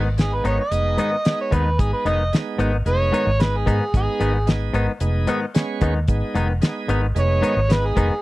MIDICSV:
0, 0, Header, 1, 6, 480
1, 0, Start_track
1, 0, Tempo, 536721
1, 1604, Time_signature, 4, 2, 24, 8
1, 7350, End_track
2, 0, Start_track
2, 0, Title_t, "Harmonica"
2, 0, Program_c, 0, 22
2, 177, Note_on_c, 0, 68, 78
2, 302, Note_on_c, 0, 71, 80
2, 316, Note_off_c, 0, 68, 0
2, 404, Note_off_c, 0, 71, 0
2, 419, Note_on_c, 0, 73, 74
2, 526, Note_off_c, 0, 73, 0
2, 539, Note_on_c, 0, 75, 94
2, 1231, Note_off_c, 0, 75, 0
2, 1261, Note_on_c, 0, 73, 72
2, 1375, Note_on_c, 0, 71, 80
2, 1389, Note_off_c, 0, 73, 0
2, 1615, Note_on_c, 0, 68, 84
2, 1629, Note_off_c, 0, 71, 0
2, 1724, Note_off_c, 0, 68, 0
2, 1728, Note_on_c, 0, 71, 77
2, 1851, Note_on_c, 0, 75, 89
2, 1865, Note_off_c, 0, 71, 0
2, 2080, Note_off_c, 0, 75, 0
2, 2575, Note_on_c, 0, 73, 119
2, 3054, Note_on_c, 0, 71, 91
2, 3068, Note_off_c, 0, 73, 0
2, 3186, Note_on_c, 0, 68, 79
2, 3199, Note_off_c, 0, 71, 0
2, 3523, Note_off_c, 0, 68, 0
2, 3548, Note_on_c, 0, 68, 88
2, 4002, Note_off_c, 0, 68, 0
2, 6431, Note_on_c, 0, 73, 100
2, 6909, Note_on_c, 0, 71, 83
2, 6922, Note_off_c, 0, 73, 0
2, 7027, Note_on_c, 0, 68, 81
2, 7040, Note_off_c, 0, 71, 0
2, 7350, Note_off_c, 0, 68, 0
2, 7350, End_track
3, 0, Start_track
3, 0, Title_t, "Tonewheel organ"
3, 0, Program_c, 1, 16
3, 160, Note_on_c, 1, 56, 66
3, 167, Note_on_c, 1, 59, 57
3, 172, Note_on_c, 1, 63, 66
3, 512, Note_off_c, 1, 56, 0
3, 515, Note_off_c, 1, 59, 0
3, 518, Note_off_c, 1, 63, 0
3, 636, Note_on_c, 1, 56, 68
3, 641, Note_on_c, 1, 59, 62
3, 646, Note_on_c, 1, 63, 72
3, 990, Note_off_c, 1, 56, 0
3, 992, Note_off_c, 1, 59, 0
3, 995, Note_off_c, 1, 63, 0
3, 1123, Note_on_c, 1, 56, 66
3, 1126, Note_on_c, 1, 59, 64
3, 1130, Note_on_c, 1, 63, 74
3, 1473, Note_off_c, 1, 56, 0
3, 1475, Note_off_c, 1, 59, 0
3, 1477, Note_off_c, 1, 63, 0
3, 1608, Note_on_c, 1, 56, 66
3, 1609, Note_on_c, 1, 59, 62
3, 1615, Note_on_c, 1, 63, 70
3, 1956, Note_off_c, 1, 56, 0
3, 1956, Note_off_c, 1, 59, 0
3, 1959, Note_off_c, 1, 63, 0
3, 2081, Note_on_c, 1, 56, 65
3, 2085, Note_on_c, 1, 59, 60
3, 2091, Note_on_c, 1, 63, 72
3, 2432, Note_off_c, 1, 56, 0
3, 2434, Note_off_c, 1, 59, 0
3, 2437, Note_off_c, 1, 63, 0
3, 2553, Note_on_c, 1, 56, 71
3, 2558, Note_on_c, 1, 59, 62
3, 2564, Note_on_c, 1, 63, 78
3, 2908, Note_off_c, 1, 56, 0
3, 2910, Note_off_c, 1, 59, 0
3, 2914, Note_off_c, 1, 63, 0
3, 3035, Note_on_c, 1, 56, 71
3, 3044, Note_on_c, 1, 59, 62
3, 3046, Note_on_c, 1, 63, 78
3, 3389, Note_off_c, 1, 56, 0
3, 3394, Note_off_c, 1, 59, 0
3, 3395, Note_off_c, 1, 63, 0
3, 3520, Note_on_c, 1, 56, 70
3, 3525, Note_on_c, 1, 59, 65
3, 3529, Note_on_c, 1, 63, 79
3, 3872, Note_off_c, 1, 56, 0
3, 3874, Note_off_c, 1, 59, 0
3, 3876, Note_off_c, 1, 63, 0
3, 3991, Note_on_c, 1, 56, 65
3, 4000, Note_on_c, 1, 59, 61
3, 4003, Note_on_c, 1, 63, 72
3, 4348, Note_off_c, 1, 56, 0
3, 4352, Note_off_c, 1, 59, 0
3, 4353, Note_off_c, 1, 63, 0
3, 4475, Note_on_c, 1, 56, 84
3, 4478, Note_on_c, 1, 59, 80
3, 4485, Note_on_c, 1, 63, 93
3, 4830, Note_off_c, 1, 56, 0
3, 4831, Note_off_c, 1, 59, 0
3, 4835, Note_off_c, 1, 63, 0
3, 4957, Note_on_c, 1, 56, 75
3, 4963, Note_on_c, 1, 59, 74
3, 4965, Note_on_c, 1, 61, 88
3, 5311, Note_off_c, 1, 56, 0
3, 5314, Note_off_c, 1, 59, 0
3, 5315, Note_off_c, 1, 61, 0
3, 5440, Note_on_c, 1, 56, 79
3, 5445, Note_on_c, 1, 63, 86
3, 5446, Note_on_c, 1, 59, 74
3, 5792, Note_off_c, 1, 56, 0
3, 5795, Note_off_c, 1, 59, 0
3, 5795, Note_off_c, 1, 63, 0
3, 5915, Note_on_c, 1, 56, 78
3, 5920, Note_on_c, 1, 59, 69
3, 5921, Note_on_c, 1, 63, 79
3, 6270, Note_off_c, 1, 56, 0
3, 6272, Note_off_c, 1, 59, 0
3, 6273, Note_off_c, 1, 63, 0
3, 6393, Note_on_c, 1, 56, 72
3, 6400, Note_on_c, 1, 59, 63
3, 6402, Note_on_c, 1, 63, 79
3, 6749, Note_off_c, 1, 56, 0
3, 6752, Note_off_c, 1, 59, 0
3, 6753, Note_off_c, 1, 63, 0
3, 6874, Note_on_c, 1, 56, 69
3, 6881, Note_on_c, 1, 59, 61
3, 6883, Note_on_c, 1, 63, 68
3, 7229, Note_off_c, 1, 56, 0
3, 7233, Note_off_c, 1, 59, 0
3, 7234, Note_off_c, 1, 63, 0
3, 7350, End_track
4, 0, Start_track
4, 0, Title_t, "Clean electric guitar"
4, 0, Program_c, 2, 27
4, 393, Note_on_c, 2, 44, 76
4, 400, Note_on_c, 2, 51, 76
4, 405, Note_on_c, 2, 59, 80
4, 410, Note_on_c, 2, 63, 82
4, 544, Note_off_c, 2, 44, 0
4, 548, Note_off_c, 2, 51, 0
4, 550, Note_off_c, 2, 59, 0
4, 553, Note_off_c, 2, 63, 0
4, 874, Note_on_c, 2, 44, 72
4, 881, Note_on_c, 2, 51, 72
4, 887, Note_on_c, 2, 59, 76
4, 890, Note_on_c, 2, 63, 83
4, 1025, Note_off_c, 2, 44, 0
4, 1028, Note_off_c, 2, 51, 0
4, 1032, Note_off_c, 2, 59, 0
4, 1033, Note_off_c, 2, 63, 0
4, 1353, Note_on_c, 2, 44, 70
4, 1360, Note_on_c, 2, 51, 68
4, 1364, Note_on_c, 2, 59, 81
4, 1370, Note_on_c, 2, 63, 79
4, 1504, Note_off_c, 2, 44, 0
4, 1508, Note_off_c, 2, 51, 0
4, 1510, Note_off_c, 2, 59, 0
4, 1513, Note_off_c, 2, 63, 0
4, 1837, Note_on_c, 2, 44, 71
4, 1844, Note_on_c, 2, 51, 74
4, 1849, Note_on_c, 2, 59, 72
4, 1852, Note_on_c, 2, 63, 88
4, 1986, Note_off_c, 2, 44, 0
4, 1990, Note_off_c, 2, 51, 0
4, 1992, Note_off_c, 2, 59, 0
4, 1994, Note_off_c, 2, 63, 0
4, 2311, Note_on_c, 2, 44, 77
4, 2317, Note_on_c, 2, 51, 83
4, 2324, Note_on_c, 2, 59, 86
4, 2327, Note_on_c, 2, 63, 91
4, 2463, Note_off_c, 2, 44, 0
4, 2466, Note_off_c, 2, 51, 0
4, 2470, Note_off_c, 2, 59, 0
4, 2471, Note_off_c, 2, 63, 0
4, 2791, Note_on_c, 2, 44, 71
4, 2797, Note_on_c, 2, 51, 70
4, 2802, Note_on_c, 2, 59, 75
4, 2806, Note_on_c, 2, 63, 81
4, 2943, Note_off_c, 2, 44, 0
4, 2946, Note_off_c, 2, 51, 0
4, 2949, Note_off_c, 2, 59, 0
4, 2951, Note_off_c, 2, 63, 0
4, 3274, Note_on_c, 2, 44, 72
4, 3278, Note_on_c, 2, 51, 72
4, 3284, Note_on_c, 2, 59, 73
4, 3287, Note_on_c, 2, 63, 77
4, 3425, Note_off_c, 2, 44, 0
4, 3427, Note_off_c, 2, 51, 0
4, 3430, Note_off_c, 2, 59, 0
4, 3431, Note_off_c, 2, 63, 0
4, 3754, Note_on_c, 2, 44, 71
4, 3762, Note_on_c, 2, 51, 70
4, 3765, Note_on_c, 2, 59, 78
4, 3771, Note_on_c, 2, 63, 78
4, 3905, Note_off_c, 2, 44, 0
4, 3909, Note_off_c, 2, 51, 0
4, 3910, Note_off_c, 2, 59, 0
4, 3913, Note_off_c, 2, 63, 0
4, 4234, Note_on_c, 2, 44, 86
4, 4242, Note_on_c, 2, 51, 84
4, 4247, Note_on_c, 2, 59, 96
4, 4250, Note_on_c, 2, 63, 83
4, 4385, Note_off_c, 2, 44, 0
4, 4389, Note_off_c, 2, 51, 0
4, 4391, Note_off_c, 2, 59, 0
4, 4393, Note_off_c, 2, 63, 0
4, 4716, Note_on_c, 2, 44, 80
4, 4724, Note_on_c, 2, 51, 83
4, 4728, Note_on_c, 2, 59, 98
4, 4732, Note_on_c, 2, 63, 87
4, 4866, Note_off_c, 2, 44, 0
4, 4870, Note_off_c, 2, 51, 0
4, 4872, Note_off_c, 2, 59, 0
4, 4874, Note_off_c, 2, 63, 0
4, 5200, Note_on_c, 2, 44, 83
4, 5205, Note_on_c, 2, 51, 85
4, 5209, Note_on_c, 2, 59, 77
4, 5217, Note_on_c, 2, 63, 94
4, 5348, Note_off_c, 2, 44, 0
4, 5351, Note_off_c, 2, 51, 0
4, 5353, Note_off_c, 2, 59, 0
4, 5356, Note_off_c, 2, 63, 0
4, 5676, Note_on_c, 2, 44, 83
4, 5683, Note_on_c, 2, 51, 82
4, 5689, Note_on_c, 2, 59, 88
4, 5694, Note_on_c, 2, 63, 85
4, 5826, Note_off_c, 2, 44, 0
4, 5830, Note_off_c, 2, 51, 0
4, 5833, Note_off_c, 2, 59, 0
4, 5835, Note_off_c, 2, 63, 0
4, 6157, Note_on_c, 2, 44, 77
4, 6163, Note_on_c, 2, 51, 85
4, 6168, Note_on_c, 2, 59, 87
4, 6172, Note_on_c, 2, 63, 89
4, 6307, Note_off_c, 2, 44, 0
4, 6310, Note_off_c, 2, 51, 0
4, 6312, Note_off_c, 2, 59, 0
4, 6314, Note_off_c, 2, 63, 0
4, 6635, Note_on_c, 2, 44, 70
4, 6641, Note_on_c, 2, 51, 75
4, 6644, Note_on_c, 2, 59, 77
4, 6650, Note_on_c, 2, 63, 77
4, 6786, Note_off_c, 2, 44, 0
4, 6789, Note_off_c, 2, 51, 0
4, 6790, Note_off_c, 2, 59, 0
4, 6794, Note_off_c, 2, 63, 0
4, 7119, Note_on_c, 2, 44, 65
4, 7126, Note_on_c, 2, 51, 75
4, 7130, Note_on_c, 2, 59, 76
4, 7135, Note_on_c, 2, 63, 79
4, 7268, Note_off_c, 2, 44, 0
4, 7271, Note_off_c, 2, 51, 0
4, 7273, Note_off_c, 2, 59, 0
4, 7276, Note_off_c, 2, 63, 0
4, 7350, End_track
5, 0, Start_track
5, 0, Title_t, "Fingered electric bass"
5, 0, Program_c, 3, 33
5, 0, Note_on_c, 3, 32, 79
5, 366, Note_off_c, 3, 32, 0
5, 400, Note_on_c, 3, 32, 81
5, 513, Note_off_c, 3, 32, 0
5, 637, Note_on_c, 3, 29, 85
5, 858, Note_off_c, 3, 29, 0
5, 1363, Note_on_c, 3, 39, 79
5, 1581, Note_off_c, 3, 39, 0
5, 1602, Note_on_c, 3, 32, 96
5, 1714, Note_off_c, 3, 32, 0
5, 1834, Note_on_c, 3, 29, 82
5, 2056, Note_off_c, 3, 29, 0
5, 2312, Note_on_c, 3, 32, 79
5, 2535, Note_off_c, 3, 32, 0
5, 2554, Note_on_c, 3, 29, 92
5, 2776, Note_off_c, 3, 29, 0
5, 2922, Note_on_c, 3, 32, 81
5, 3248, Note_off_c, 3, 32, 0
5, 3282, Note_on_c, 3, 44, 79
5, 3394, Note_off_c, 3, 44, 0
5, 3522, Note_on_c, 3, 32, 97
5, 3634, Note_off_c, 3, 32, 0
5, 3760, Note_on_c, 3, 32, 78
5, 4206, Note_off_c, 3, 32, 0
5, 4237, Note_on_c, 3, 32, 86
5, 4351, Note_off_c, 3, 32, 0
5, 4478, Note_on_c, 3, 29, 85
5, 4698, Note_off_c, 3, 29, 0
5, 5202, Note_on_c, 3, 39, 75
5, 5421, Note_off_c, 3, 39, 0
5, 5441, Note_on_c, 3, 32, 91
5, 5553, Note_off_c, 3, 32, 0
5, 5681, Note_on_c, 3, 29, 80
5, 5900, Note_off_c, 3, 29, 0
5, 6159, Note_on_c, 3, 32, 78
5, 6379, Note_off_c, 3, 32, 0
5, 6401, Note_on_c, 3, 29, 96
5, 6621, Note_off_c, 3, 29, 0
5, 6767, Note_on_c, 3, 32, 82
5, 7091, Note_off_c, 3, 32, 0
5, 7122, Note_on_c, 3, 29, 77
5, 7234, Note_off_c, 3, 29, 0
5, 7350, End_track
6, 0, Start_track
6, 0, Title_t, "Drums"
6, 160, Note_on_c, 9, 42, 75
6, 173, Note_on_c, 9, 38, 99
6, 249, Note_off_c, 9, 42, 0
6, 262, Note_off_c, 9, 38, 0
6, 401, Note_on_c, 9, 42, 62
6, 490, Note_off_c, 9, 42, 0
6, 640, Note_on_c, 9, 42, 80
6, 730, Note_off_c, 9, 42, 0
6, 877, Note_on_c, 9, 42, 61
6, 967, Note_off_c, 9, 42, 0
6, 1117, Note_on_c, 9, 42, 81
6, 1130, Note_on_c, 9, 38, 101
6, 1206, Note_off_c, 9, 42, 0
6, 1220, Note_off_c, 9, 38, 0
6, 1362, Note_on_c, 9, 36, 78
6, 1362, Note_on_c, 9, 42, 61
6, 1451, Note_off_c, 9, 42, 0
6, 1452, Note_off_c, 9, 36, 0
6, 1602, Note_on_c, 9, 42, 78
6, 1603, Note_on_c, 9, 36, 99
6, 1692, Note_off_c, 9, 36, 0
6, 1692, Note_off_c, 9, 42, 0
6, 1841, Note_on_c, 9, 42, 60
6, 1930, Note_off_c, 9, 42, 0
6, 2084, Note_on_c, 9, 42, 75
6, 2097, Note_on_c, 9, 38, 94
6, 2173, Note_off_c, 9, 42, 0
6, 2187, Note_off_c, 9, 38, 0
6, 2320, Note_on_c, 9, 42, 58
6, 2409, Note_off_c, 9, 42, 0
6, 2558, Note_on_c, 9, 42, 78
6, 2647, Note_off_c, 9, 42, 0
6, 2806, Note_on_c, 9, 42, 56
6, 2895, Note_off_c, 9, 42, 0
6, 3040, Note_on_c, 9, 42, 70
6, 3054, Note_on_c, 9, 38, 103
6, 3130, Note_off_c, 9, 42, 0
6, 3143, Note_off_c, 9, 38, 0
6, 3283, Note_on_c, 9, 36, 78
6, 3286, Note_on_c, 9, 42, 57
6, 3372, Note_off_c, 9, 36, 0
6, 3376, Note_off_c, 9, 42, 0
6, 3523, Note_on_c, 9, 36, 104
6, 3526, Note_on_c, 9, 42, 70
6, 3612, Note_off_c, 9, 36, 0
6, 3616, Note_off_c, 9, 42, 0
6, 3760, Note_on_c, 9, 42, 60
6, 3849, Note_off_c, 9, 42, 0
6, 3999, Note_on_c, 9, 42, 73
6, 4013, Note_on_c, 9, 38, 102
6, 4089, Note_off_c, 9, 42, 0
6, 4102, Note_off_c, 9, 38, 0
6, 4240, Note_on_c, 9, 42, 61
6, 4329, Note_off_c, 9, 42, 0
6, 4474, Note_on_c, 9, 42, 82
6, 4564, Note_off_c, 9, 42, 0
6, 4715, Note_on_c, 9, 42, 60
6, 4805, Note_off_c, 9, 42, 0
6, 4960, Note_on_c, 9, 42, 77
6, 4973, Note_on_c, 9, 38, 105
6, 5049, Note_off_c, 9, 42, 0
6, 5062, Note_off_c, 9, 38, 0
6, 5196, Note_on_c, 9, 42, 62
6, 5201, Note_on_c, 9, 36, 83
6, 5285, Note_off_c, 9, 42, 0
6, 5291, Note_off_c, 9, 36, 0
6, 5434, Note_on_c, 9, 42, 79
6, 5441, Note_on_c, 9, 36, 100
6, 5523, Note_off_c, 9, 42, 0
6, 5531, Note_off_c, 9, 36, 0
6, 5682, Note_on_c, 9, 42, 62
6, 5772, Note_off_c, 9, 42, 0
6, 5918, Note_on_c, 9, 42, 79
6, 5931, Note_on_c, 9, 38, 96
6, 6007, Note_off_c, 9, 42, 0
6, 6021, Note_off_c, 9, 38, 0
6, 6161, Note_on_c, 9, 42, 64
6, 6251, Note_off_c, 9, 42, 0
6, 6403, Note_on_c, 9, 42, 79
6, 6493, Note_off_c, 9, 42, 0
6, 6647, Note_on_c, 9, 42, 57
6, 6736, Note_off_c, 9, 42, 0
6, 6886, Note_on_c, 9, 42, 77
6, 6899, Note_on_c, 9, 38, 98
6, 6975, Note_off_c, 9, 42, 0
6, 6989, Note_off_c, 9, 38, 0
6, 7125, Note_on_c, 9, 36, 80
6, 7125, Note_on_c, 9, 42, 59
6, 7215, Note_off_c, 9, 36, 0
6, 7215, Note_off_c, 9, 42, 0
6, 7350, End_track
0, 0, End_of_file